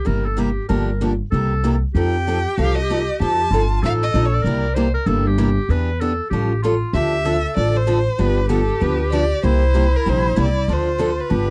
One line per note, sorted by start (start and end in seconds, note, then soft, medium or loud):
0.05 0.57 G1 medium
0.05 0.26 C3 medium
0.05 0.26 G3 medium
0.05 0.26 A#3 medium
0.05 0.26 E4 medium
0.05 0.26 G4 medium
0.05 0.27 A#4 medium
0.26 0.41 A4 medium
0.37 0.48 C3 medium
0.37 0.49 G3 medium
0.37 0.49 A#3 medium
0.37 0.49 E4 medium
0.37 0.49 G4 loud
0.37 0.68 G4 medium
0.69 1.20 G1 medium
0.69 0.89 D3 medium
0.69 0.89 F3 medium
0.69 0.89 A#3 medium
0.69 0.89 D4 medium
0.69 0.89 G4 medium
0.69 1.03 A#4 medium
1.01 1.12 D3 medium
1.01 1.12 F3 medium
1.01 1.12 A#3 medium
1.01 1.12 D4 medium
1.01 1.12 G4 medium
1.31 1.82 C2 medium
1.31 1.52 C3 medium
1.31 1.53 G3 medium
1.31 1.53 A#3 medium
1.31 1.53 E4 medium
1.31 1.53 G4 medium
1.31 1.78 A4 medium
1.64 1.74 C3 medium
1.64 1.74 G3 medium
1.64 1.75 A#3 medium
1.64 1.75 E4 loud
1.64 1.75 G4 medium
1.94 2.45 F2 medium
1.94 2.15 F3 medium
1.94 2.15 C4 medium
1.94 2.15 D#4 medium
1.94 3.53 G4 loud
1.94 2.15 A4 medium
1.94 2.55 G5 medium
2.27 2.37 F3 medium
2.27 2.38 C4 medium
2.27 2.38 D#4 medium
2.27 2.38 A4 medium
2.58 3.08 C2 medium
2.58 2.77 F3 medium
2.58 2.78 C4 medium
2.58 2.78 D#4 medium
2.58 2.78 A4 medium
2.58 2.76 F5 loud
2.78 3.18 D#5 medium
2.90 3.00 F3 medium
2.90 3.00 C4 medium
2.90 3.00 D#4 medium
2.90 3.01 A4 medium
3.20 3.45 F2 medium
3.20 3.40 F3 medium
3.20 3.40 C4 medium
3.20 3.41 D#4 medium
3.20 3.41 A4 medium
3.20 3.80 A5 medium
3.51 3.77 G1 medium
3.51 3.63 F3 medium
3.51 3.63 C4 medium
3.51 3.63 D#4 medium
3.51 3.84 F4 medium
3.51 3.63 A4 loud
3.83 4.09 A1 medium
3.83 4.02 F3 medium
3.83 4.02 C4 medium
3.83 4.03 D#4 medium
3.83 4.44 A4 loud
3.83 4.03 A4 medium
3.83 3.93 F5 medium
4.03 4.27 D#5 medium
4.14 4.40 A#1 medium
4.14 4.25 F3 medium
4.14 4.25 C4 medium
4.14 4.25 D#4 loud
4.14 4.25 A4 medium
4.26 4.36 C#5 medium
4.34 4.64 D5 medium
4.43 4.95 C2 medium
4.43 4.65 C3 medium
4.43 4.65 G3 medium
4.43 4.65 A#3 medium
4.43 4.76 A#4 loud
4.47 4.65 E4 medium
4.47 4.65 G4 medium
4.74 4.87 C3 medium
4.74 4.87 G3 medium
4.74 4.87 A#3 medium
4.74 4.87 E4 medium
4.74 4.87 G4 medium
4.74 4.93 C5 medium
4.94 5.09 A#4 medium
5.06 5.57 G1 medium
5.06 5.26 C3 medium
5.06 5.26 G3 medium
5.06 5.26 A#3 medium
5.06 5.27 E4 medium
5.06 5.27 G4 medium
5.06 5.28 A4 loud
5.27 5.72 G4 loud
5.38 5.49 C3 medium
5.38 5.49 G3 medium
5.38 5.49 A#3 medium
5.38 5.49 E4 medium
5.38 5.49 G4 medium
5.69 6.19 E2 medium
5.69 5.89 E3 medium
5.69 5.89 B3 medium
5.69 5.90 D4 medium
5.69 5.90 G4 medium
5.69 6.02 B4 loud
6.00 6.12 E3 medium
6.00 6.12 B3 medium
6.00 6.11 D4 medium
6.00 6.12 G4 medium
6.00 6.29 A4 medium
6.30 6.81 A1 medium
6.30 6.52 F3 medium
6.30 6.52 G3 medium
6.30 6.52 C#4 medium
6.30 6.52 F4 medium
6.30 6.60 G4 medium
6.30 6.52 A4 medium
6.63 6.74 F3 medium
6.63 6.74 G3 medium
6.63 6.74 C#4 medium
6.63 6.97 F4 medium
6.63 6.74 F4 medium
6.63 6.74 A4 loud
6.93 7.44 D2 medium
6.93 7.14 D3 medium
6.93 7.14 F3 medium
6.93 7.14 C4 medium
6.93 7.14 D4 medium
6.93 7.27 G4 medium
6.93 7.15 A4 medium
6.93 7.53 E5 loud
7.25 7.36 D3 medium
7.25 7.36 F3 medium
7.25 7.36 C4 medium
7.25 7.36 D4 medium
7.25 7.36 A4 medium
7.25 7.93 A4 medium
7.55 8.07 A1 medium
7.55 7.75 D3 medium
7.55 7.76 F3 medium
7.55 7.76 C4 medium
7.55 7.76 D4 medium
7.55 7.76 A4 medium
7.55 7.78 D5 medium
7.76 8.22 C5 medium
7.87 7.98 D3 medium
7.87 7.98 F3 medium
7.87 7.98 C4 medium
7.87 7.98 D4 loud
7.87 7.98 A4 medium
8.18 8.69 G1 medium
8.18 8.38 D3 medium
8.18 8.38 F3 medium
8.18 8.38 B3 medium
8.18 8.38 D4 medium
8.18 9.46 G4 medium
8.18 8.38 G4 medium
8.18 8.50 B4 medium
8.49 8.60 D3 medium
8.49 8.61 F3 medium
8.49 8.60 B3 medium
8.49 8.61 D4 medium
8.49 8.60 G4 medium
8.49 8.83 A4 medium
8.80 9.31 D2 medium
8.80 9.00 D3 medium
8.80 9.01 F3 medium
8.80 9.01 B3 medium
8.80 9.01 D4 medium
8.80 9.01 G4 medium
8.80 9.12 B4 medium
9.12 9.23 D3 medium
9.12 9.23 F3 medium
9.12 9.23 B3 medium
9.12 9.23 D4 medium
9.12 9.23 G4 medium
9.12 9.42 D5 medium
9.43 9.94 C2 medium
9.43 9.63 C3 medium
9.43 9.63 G3 medium
9.43 9.63 A#3 medium
9.43 9.63 E4 medium
9.43 10.71 E4 loud
9.43 9.63 G4 medium
9.43 9.98 C5 medium
9.74 9.85 C3 medium
9.74 9.85 G3 medium
9.74 9.85 A#3 medium
9.74 9.85 E4 medium
9.74 9.86 G4 medium
9.96 10.11 A#4 medium
10.06 10.33 A#1 medium
10.06 10.25 C3 medium
10.06 10.26 G3 medium
10.06 10.26 A#3 medium
10.06 10.26 E4 medium
10.06 10.26 G4 medium
10.06 10.39 C5 medium
10.36 10.64 C2 medium
10.36 10.47 C3 medium
10.36 10.47 G3 medium
10.36 10.47 A#3 medium
10.36 10.48 E4 loud
10.36 10.48 G4 medium
10.41 10.74 D5 medium
10.68 11.18 D2 medium
10.68 10.88 D3 medium
10.68 10.88 F3 medium
10.68 10.88 C4 medium
10.68 10.88 D4 medium
10.68 11.32 F4 medium
10.68 10.88 A4 medium
10.73 11.22 C5 medium
10.98 11.10 D3 medium
10.98 11.10 F3 medium
10.98 11.10 C4 medium
10.98 11.10 D4 medium
10.98 11.10 A4 loud
11.20 11.50 B4 medium
11.29 11.50 G1 medium
11.29 11.50 D3 medium
11.29 11.49 F3 medium
11.29 11.50 B3 medium
11.29 11.50 D4 medium
11.29 11.50 G4 medium